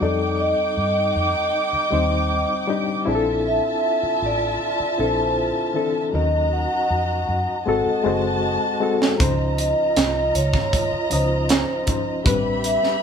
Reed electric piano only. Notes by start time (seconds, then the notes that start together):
0.00 G3 C4 D#4 A4
1.91 G3 C4 D#4 C5
2.67 G3 D4 D#4 G4
3.06 C4 D4 E4 G#4
3.15 A4
4.98 C4 D4 E4 A4
5.74 E3 C4 D4 A4
6.13 F#3 C#4 D#4 A#4
7.66 G#3 C4 F#4 A4
8.04 G#3 C4 F#4 C5
8.80 G#3 C4 F#4 A4
9.19 F3 C#4 D#4 C5
11.10 F3 C#4 D#4 D#5
11.86 F3 C#4 D#4 C5
12.24 G3 C4 D4 B4